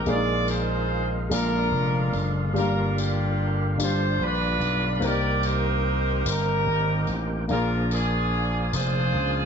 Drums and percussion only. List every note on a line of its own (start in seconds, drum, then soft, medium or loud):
0.06 tambourine soft
0.48 tambourine medium
1.31 tambourine loud
2.13 tambourine soft
2.56 tambourine soft
2.98 tambourine medium
3.80 tambourine loud
4.61 tambourine soft
5.02 tambourine soft
5.43 tambourine medium
6.26 tambourine loud
7.07 tambourine soft
7.49 tambourine soft
7.91 tambourine medium
8.73 tambourine loud